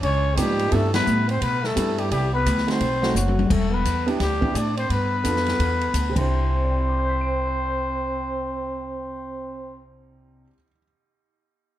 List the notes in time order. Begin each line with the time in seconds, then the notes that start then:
0.01 C#2 C#4 C#5, kick, ride
0.36 G#2 F3 G3 A#3 B3 D#4 G4, kick, hi-hat pedal, ride
0.59 ride
0.72 G2 G3 A3 B3 D4 E4 A4, kick, ride
0.94 B3 B4, snare, ride
1.06 A2, hi-hat pedal
1.29 C4 C5, ride
1.41 B2 B3 B4, kick, ride
1.64 A3 A4, snare
1.75 G2 G3 B3 D4 E4, kick, hi-hat pedal, ride
1.98 G3 G4, ride
2.11 C2 G3 G4, kick, ride
2.33 B3 B4
2.46 D2, kick, hi-hat pedal, ride
2.58 snare
2.67 A3 C4 D#4 F#4 C5, snare, ride
2.80 B1, kick, ride
3.02 A3 C4 D#4 F#4, snare
3.15 F#1 F#3 F#4, hi-hat pedal
3.28 high tom
3.39 high tom
3.50 E1 A3 A4, kick, crash
3.72 B3 B4
3.85 E2, kick, hi-hat pedal, ride
4.06 B3 D4 E4 G4, ride
4.19 D2 G3 G4, kick, snare, ride
4.41 B3 D4 E4 G4, kick
4.55 A2 D4 D5, kick, hi-hat pedal, ride
4.77 C4 C5, ride
4.90 G2 B3 B4, kick, ride
5.24 F2 B3 D4 F4 A4, kick, hi-hat pedal, ride
5.36 snare
5.46 snare, ride
5.59 E2, kick, ride
5.81 ride
5.93 D2, kick, hi-hat pedal, ride
6.09 C3 C4
6.15 C2 C4 D4 E4 C5, kick, crash
6.21 C5
6.64 D5
6.71 G5
6.80 B5
6.89 D6
6.99 G6
7.09 B6
7.21 D7